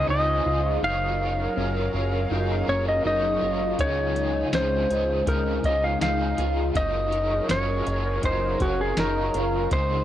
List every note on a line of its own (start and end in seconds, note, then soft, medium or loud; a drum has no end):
0.00 0.80 C#3 medium
0.00 0.80 G#3 medium
0.00 0.80 D#4 medium
0.00 9.68 F4 medium
0.00 0.80 C5 medium
0.08 0.41 C#2 medium
0.08 0.45 C#3 medium
0.08 0.46 C4 medium
0.08 0.46 D#4 medium
0.08 0.46 F4 medium
0.08 0.44 G#4 medium
0.08 0.84 D#5 medium
0.45 0.78 C#2 loud
0.45 0.84 D#4 soft
0.45 0.83 F4 medium
0.45 0.82 G#4 soft
0.50 0.82 F4 soft
0.82 1.48 F#1 loud
0.82 1.19 F#3 medium
0.82 3.76 F#3 medium
0.82 3.76 C#4 medium
0.82 1.56 D#4 medium
0.82 1.20 F4 medium
0.82 3.76 G#4 medium
0.82 3.76 A#4 medium
0.82 1.21 A#4 medium
0.82 1.18 C#5 medium
0.82 2.74 F5 loud
1.19 1.58 A#4 soft
1.19 1.56 C#5 soft
1.24 1.56 F4 soft
1.56 1.89 F#1 loud
1.56 1.94 F#3 medium
1.56 2.30 C#4 medium
1.56 1.94 F4 medium
1.56 1.94 A#4 medium
1.56 1.92 C#5 medium
1.93 2.26 F#1 loud
1.93 2.32 A#4 soft
1.93 2.30 C#5 medium
1.97 2.30 F4 soft
2.30 2.63 F#1 loud
2.30 2.67 F#3 medium
2.30 2.68 D#4 medium
2.30 2.68 F4 medium
2.30 2.68 A#4 medium
2.34 2.65 C#5 medium
2.67 3.01 F#1 medium
2.67 3.05 C#4 medium
2.67 3.06 A#4 soft
2.67 3.04 C#5 soft
2.67 2.88 C#5 medium
2.71 3.04 F4 soft
2.88 3.05 D#5 medium
3.04 3.38 F#1 medium
3.04 3.42 F#3 medium
3.04 3.42 D#4 medium
3.04 3.42 F4 medium
3.04 3.42 A#4 medium
3.04 3.40 C#5 medium
3.04 3.82 D#5 medium
3.41 3.75 F#1 medium
3.41 3.79 F4 medium
3.41 3.80 A#4 soft
3.41 3.78 C#5 soft
3.46 3.79 F4 soft
3.78 4.44 C#2 loud
3.78 4.16 C#3 medium
3.78 6.72 C#3 medium
3.78 6.72 G#3 medium
3.78 4.53 D#4 medium
3.78 6.72 D#4 medium
3.78 4.16 D#4 medium
3.78 4.17 F4 medium
3.78 4.14 G#4 medium
3.78 4.54 C#5 loud
3.78 kick loud
3.78 closed hi-hat medium
4.15 4.53 D#4 soft
4.15 4.53 G#4 soft
4.15 closed hi-hat soft
4.20 4.53 F4 soft
4.52 4.86 C#2 medium
4.52 4.90 C#3 medium
4.52 4.90 C4 medium
4.52 5.26 C#4 medium
4.52 4.90 D#4 medium
4.52 4.90 F4 medium
4.52 4.88 G#4 medium
4.52 5.24 C5 medium
4.52 snare loud
4.52 closed hi-hat medium
4.89 5.23 C#2 loud
4.89 5.28 D#4 soft
4.89 5.27 G#4 soft
4.89 closed hi-hat soft
4.94 5.26 F4 soft
5.26 5.60 C#2 medium
5.26 5.64 C4 medium
5.26 5.64 D#4 medium
5.26 5.64 F4 medium
5.26 5.66 A#4 medium
5.26 kick medium
5.26 closed hi-hat medium
5.31 5.61 G#4 medium
5.62 5.97 C#2 medium
5.62 6.01 C#4 medium
5.62 6.01 D#4 soft
5.62 6.00 G#4 soft
5.62 5.84 D#5 medium
5.62 kick medium
5.62 closed hi-hat soft
5.67 6.01 F4 soft
5.84 6.01 F5 medium
6.00 6.34 C#2 medium
6.00 6.38 C#3 medium
6.00 6.38 C4 medium
6.00 6.38 D#4 medium
6.00 6.39 F4 medium
6.00 6.35 G#4 medium
6.00 6.76 F5 medium
6.00 snare loud
6.00 closed hi-hat medium
6.37 6.71 C#2 medium
6.37 6.76 D#4 soft
6.37 6.75 F4 medium
6.37 6.74 G#4 soft
6.37 closed hi-hat soft
6.41 6.74 F4 soft
6.74 7.41 F#1 loud
6.74 7.12 F#3 medium
6.74 9.69 F#3 medium
6.74 9.69 C#4 medium
6.74 7.49 D#4 medium
6.74 7.12 F4 medium
6.74 9.69 G#4 medium
6.74 9.69 A#4 medium
6.74 7.12 A#4 medium
6.74 7.09 C#5 medium
6.74 7.51 D#5 loud
6.74 kick loud
6.74 closed hi-hat medium
7.11 7.50 A#4 soft
7.11 7.49 C#5 soft
7.11 closed hi-hat soft
7.16 7.49 F4 soft
7.48 7.82 F#1 medium
7.48 7.86 F#3 medium
7.48 8.23 C#4 medium
7.48 7.87 F4 medium
7.48 7.87 A#4 medium
7.48 8.25 C#5 medium
7.48 7.84 C#5 medium
7.48 snare loud
7.48 closed hi-hat medium
7.85 8.19 F#1 loud
7.85 8.24 A#4 soft
7.85 8.23 C#5 soft
7.85 closed hi-hat soft
7.90 8.23 F4 soft
8.22 8.56 F#1 medium
8.22 8.60 F#3 medium
8.22 8.60 D#4 medium
8.22 8.61 F4 medium
8.22 8.60 A#4 medium
8.22 8.62 C5 medium
8.22 kick medium
8.22 closed hi-hat medium
8.59 8.93 F#1 loud
8.59 8.97 C#4 medium
8.59 8.80 F#4 medium
8.59 8.98 A#4 soft
8.59 8.97 C#5 soft
8.59 kick medium
8.59 closed hi-hat soft
8.63 8.97 F4 soft
8.81 8.99 G#4 medium
8.97 9.30 F#1 medium
8.97 9.34 F#3 medium
8.97 9.34 D#4 medium
8.97 9.35 F4 medium
8.97 9.35 A#4 medium
8.97 9.72 A#4 medium
8.97 9.32 C#5 medium
8.97 snare loud
8.97 closed hi-hat medium
9.33 9.67 F#1 loud
9.33 9.72 F4 medium
9.33 9.72 A#4 soft
9.33 9.71 C#5 soft
9.33 closed hi-hat medium
9.38 9.71 F4 soft
9.70 10.04 C#2 loud
9.70 10.04 C#3 medium
9.70 10.04 G#3 medium
9.70 10.04 C4 medium
9.70 10.04 D#4 medium
9.70 10.04 F4 medium
9.70 10.04 G#4 medium
9.70 10.04 C5 loud
9.70 kick loud
9.70 closed hi-hat medium